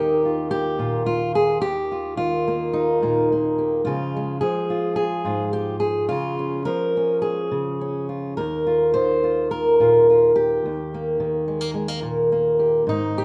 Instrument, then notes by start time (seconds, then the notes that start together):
steel-string acoustic guitar
Already playing: D#2 D#3 A#3 D#4 G4
0.25 F4
0.51 G4
0.79 A#2 F4
1.06 F4
1.35 G#4
1.62 D#2 G4
1.92 F4
2.17 D#3 F4
2.48 A#3
2.73 D#4
3.02 A#2 A#3
3.32 A#3
3.58 G4
3.85 C#3 F3 G#3 F4
4.17 G#3
4.41 F3 G#4
4.70 F4
4.96 G#4
5.24 G#2 F4
5.53 G4
5.80 G#4
6.09 C#3 F4
6.39 C#4
6.65 F3 A#4
6.97 C#4
7.22 G#4
7.51 C#3
7.81 C#4
8.09 F4
8.37 D#2 A#4
8.67 F4
8.94 D#3 C5
9.24 F4
9.51 A#4
9.80 A#2 F4
10.10 F4
10.36 G4
10.66 D#2
10.94 A#3
11.20 D#3
11.48 G#3
11.61 A#3
11.74 G#3
11.88 A#3
12.02 A#2 A#3
12.32 A#3
12.59 G4
12.87 G#2 D#4
13.18 G4